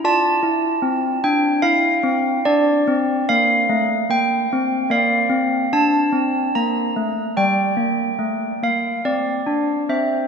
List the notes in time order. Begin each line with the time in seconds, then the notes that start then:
0.04 F4 D5 A5
0.43 E4
0.82 C4
1.24 D4 G5
1.62 E4 F5
2.03 C4
2.45 D4 D5
2.88 C4
3.29 A#3 F5
3.69 A3
4.10 A#3 G5
4.52 C4
4.90 A#3 D5 F5
5.30 C4
5.73 D4 A5
6.12 C4
6.55 A#3 A#5
6.97 A3
7.37 G3 D5 G5
7.77 A#3
8.19 A3
8.63 A#3 F5
9.05 C4 D5
9.47 D4
9.89 C4 C5 E5